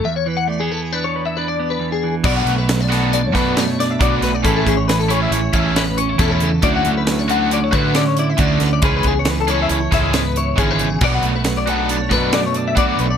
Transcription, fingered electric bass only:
\new Staff \with { instrumentName = "Fingered electric bass" } { \clef bass \time 5/4 \key b \dorian \tempo 4 = 137 r1 r4 | b,,8 b,,2 b,4. b,,8 b,,8 | a,,8 a,,4. a,,8 a,,4. e,4 | d,8 d,2 d4. d,8 d,8 |
cis,8 cis,4. cis,8 cis,4. gis,,4 | b,,8 b,,2 b,4. b,,8 b,,8 | }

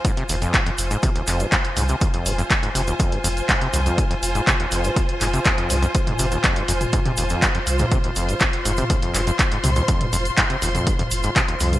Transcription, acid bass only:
\new Staff \with { instrumentName = "Acid bass" } { \clef bass \time 4/4 \key c \dorian \tempo 4 = 122 aes,16 c16 ees,16 f,16 aes,16 f,16 r16 aes,16 c16 ees,16 f,16 aes,16 f,16 r16 aes,16 c16 | ees,16 f,16 aes,16 f,16 r16 aes,16 c16 ees,16 f,16 aes,16 f,16 r16 aes,16 c16 ees,16 f,16 | aes,16 f,16 r16 aes,16 c16 ees,16 f,16 aes,16 f,16 r16 aes,16 c16 ees,16 f,16 aes,16 f,16 | r16 aes,16 c16 ees,16 f,16 aes,16 f,16 r16 aes,16 c16 ees,16 f,16 aes,16 f,16 r16 aes,16 |
c16 ees,16 f,16 aes,16 f,16 r16 aes,16 c16 ees,16 f,16 aes,16 f,16 r16 aes,16 c16 ees,16 | f,16 aes,16 f,16 r16 aes,16 c16 ees,16 f,16 aes,16 f,16 r16 aes,16 c16 ees,16 f,16 aes,16 | }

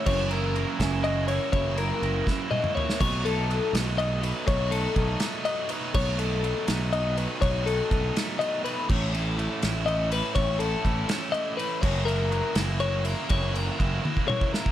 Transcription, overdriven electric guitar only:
\new Staff \with { instrumentName = "Overdriven electric guitar" } { \time 6/8 \key b \mixolydian \tempo 4. = 82 <fis, cis e ais e'>8 <e ais e'>8 <cis e ais e'>8 <e ais e'>8 <cis e ais e'>8 <e ais e'>8 | <fis, cis e ais e'>8 <e ais e'>8 <cis e ais e'>8 <e ais e'>8 <cis e ais e'>8 <e ais e'>8 | <b, fis a dis'>8 <fis a dis'>8 <b, fis a dis'>8 <fis a dis'>8 <b, fis a dis'>8 <fis a dis'>8 | <b, fis a dis'>8 <fis a dis'>8 <b, fis a dis'>8 <fis a dis'>8 <b, fis a dis'>8 <fis a dis'>8 |
<b, fis a dis'>8 <fis a dis'>8 <b, fis a dis'>8 <fis a dis'>8 <b, fis a dis'>8 <fis a dis'>8 | <b, fis a dis'>8 <fis a dis'>8 <b, fis a dis'>8 <fis a dis'>8 <b, fis a dis'>8 <fis a dis'>8 | <a, e a cis' e'>8 <a cis' e'>8 <e a cis' e'>8 <a cis' e'>8 <e a cis' e'>8 <a cis' e'>8 | <a, e a cis' e'>8 <a cis' e'>8 <e a cis' e'>8 <a cis' e'>8 <e a cis' e'>8 <a cis' e'>8 |
<fis, cis e ais e'>8 <e ais e'>8 <cis e ais e'>8 <e ais e'>8 <cis e ais e'>8 <e ais e'>8 | <fis, cis e ais e'>8 <e ais e'>8 <cis e ais e'>8 <e ais e'>8 <cis e ais e'>8 <e ais e'>8 | }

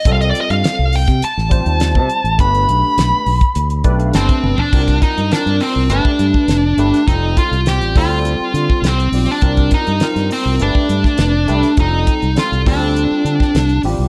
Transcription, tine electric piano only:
\new Staff \with { instrumentName = "Tine electric piano" } { \time 4/4 \key c \dorian \tempo 4 = 102 << { r1 | r2 r8 d''16 f''16 a''4 | r1 | r1 |
r1 | r1 | } \\ { <g c' f' a'>4. r4 <g c' f' c''>4 r8 | <a d' g' b'>4. r4 <a d' g' b'>4 r8 | <g c' f' bes'>4 <g c' f' bes'>4 <a d' g' b'>4 r8 <a d' g' b'>8 | <g c' f' a'>4 <g c' f' g'>8 <g c' f' a'>4. r8 <g c' f' g'>8 |
<g c' f' bes'>4 <g c' f' bes'>4 <a d' g' b'>4 r8 <a d' g' b'>8 | <g c' f' a'>4 <g c' f' a'>8 <g c' f' a'>4. r8 <g c' f' g'>8 | } >> }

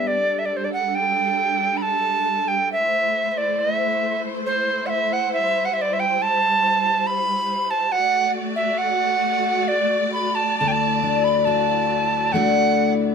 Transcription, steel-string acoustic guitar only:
\new Staff \with { instrumentName = "Steel-string acoustic guitar" } { \time 3/4 \key g \major \tempo 4 = 68 r2. | r2. | r2. | r2. |
d,8 d'8 fis'4 <a d' fis'>4 | }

